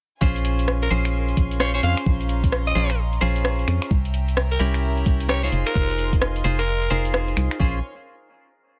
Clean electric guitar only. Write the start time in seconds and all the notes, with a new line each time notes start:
0.21 C#4 F4 G#4 C5
0.91 C#4 F4 G#4 C5
1.60 C#4 F4 G#4 C5
1.74 C#4 F4 G#4 C5
2.75 C#4 F4 G#4 C5
3.21 C#4 F4 G#4 C5
4.60 C#4 E4 G4 A#4
5.29 C#4 E4 G4 A#4
5.43 D#4 F4 G#4 C5
6.44 D#4 F4 G#4 C5
6.91 D#4 F4 G#4 C5
7.60 C#4 F4 G#4 C5